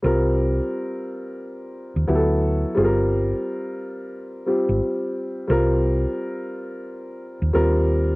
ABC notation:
X:1
M:4/4
L:1/16
Q:"Swing 16ths" 1/4=88
K:Cm
V:1 name="Upright piano"
[G,CFB]12 [^F,=B,=EG=A]4 | [G,CFAB]8- [G,CFAB]2 [G,CFG]6 | [G,CFB]12 [G,CFB]4 |]
V:2 name="Fingered electric bass" clef=bass
C,,4 z6 z E,, D,,4 | G,,,4 z6 z A,,, z4 | C,,4 z6 z E,, E,,4 |]